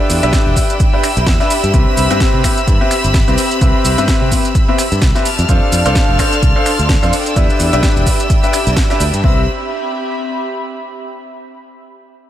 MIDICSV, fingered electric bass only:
0, 0, Header, 1, 2, 480
1, 0, Start_track
1, 0, Key_signature, 0, "major"
1, 0, Tempo, 468750
1, 1780, Time_signature, 4, 2, 24, 8
1, 12594, End_track
2, 0, Start_track
2, 0, Title_t, "Fingered electric bass"
2, 0, Program_c, 0, 33
2, 100, Note_on_c, 0, 40, 82
2, 203, Note_off_c, 0, 40, 0
2, 236, Note_on_c, 0, 35, 88
2, 314, Note_off_c, 0, 35, 0
2, 476, Note_on_c, 0, 28, 81
2, 555, Note_off_c, 0, 28, 0
2, 1196, Note_on_c, 0, 35, 98
2, 1274, Note_off_c, 0, 35, 0
2, 1300, Note_on_c, 0, 40, 95
2, 1403, Note_off_c, 0, 40, 0
2, 1677, Note_on_c, 0, 43, 84
2, 1755, Note_off_c, 0, 43, 0
2, 1780, Note_on_c, 0, 36, 97
2, 1883, Note_off_c, 0, 36, 0
2, 2020, Note_on_c, 0, 36, 84
2, 2123, Note_off_c, 0, 36, 0
2, 2157, Note_on_c, 0, 43, 91
2, 2235, Note_off_c, 0, 43, 0
2, 2397, Note_on_c, 0, 48, 82
2, 2475, Note_off_c, 0, 48, 0
2, 2740, Note_on_c, 0, 43, 85
2, 2843, Note_off_c, 0, 43, 0
2, 3117, Note_on_c, 0, 31, 79
2, 3290, Note_off_c, 0, 31, 0
2, 3357, Note_on_c, 0, 36, 93
2, 3435, Note_off_c, 0, 36, 0
2, 3700, Note_on_c, 0, 36, 100
2, 3803, Note_off_c, 0, 36, 0
2, 3940, Note_on_c, 0, 36, 86
2, 4043, Note_off_c, 0, 36, 0
2, 4077, Note_on_c, 0, 43, 92
2, 4155, Note_off_c, 0, 43, 0
2, 4317, Note_on_c, 0, 48, 86
2, 4395, Note_off_c, 0, 48, 0
2, 5037, Note_on_c, 0, 43, 96
2, 5115, Note_off_c, 0, 43, 0
2, 5140, Note_on_c, 0, 36, 97
2, 5243, Note_off_c, 0, 36, 0
2, 5517, Note_on_c, 0, 41, 88
2, 5595, Note_off_c, 0, 41, 0
2, 5620, Note_on_c, 0, 41, 106
2, 5723, Note_off_c, 0, 41, 0
2, 5860, Note_on_c, 0, 41, 87
2, 5963, Note_off_c, 0, 41, 0
2, 5997, Note_on_c, 0, 36, 94
2, 6075, Note_off_c, 0, 36, 0
2, 6237, Note_on_c, 0, 29, 83
2, 6315, Note_off_c, 0, 29, 0
2, 6580, Note_on_c, 0, 36, 88
2, 6683, Note_off_c, 0, 36, 0
2, 6956, Note_on_c, 0, 38, 87
2, 7129, Note_off_c, 0, 38, 0
2, 7197, Note_on_c, 0, 41, 94
2, 7275, Note_off_c, 0, 41, 0
2, 7540, Note_on_c, 0, 40, 105
2, 7643, Note_off_c, 0, 40, 0
2, 7780, Note_on_c, 0, 40, 84
2, 7883, Note_off_c, 0, 40, 0
2, 7917, Note_on_c, 0, 35, 92
2, 7995, Note_off_c, 0, 35, 0
2, 8157, Note_on_c, 0, 28, 86
2, 8235, Note_off_c, 0, 28, 0
2, 8876, Note_on_c, 0, 35, 99
2, 8954, Note_off_c, 0, 35, 0
2, 9219, Note_on_c, 0, 38, 99
2, 9323, Note_off_c, 0, 38, 0
2, 9356, Note_on_c, 0, 43, 98
2, 9434, Note_off_c, 0, 43, 0
2, 9460, Note_on_c, 0, 36, 97
2, 9683, Note_off_c, 0, 36, 0
2, 12594, End_track
0, 0, End_of_file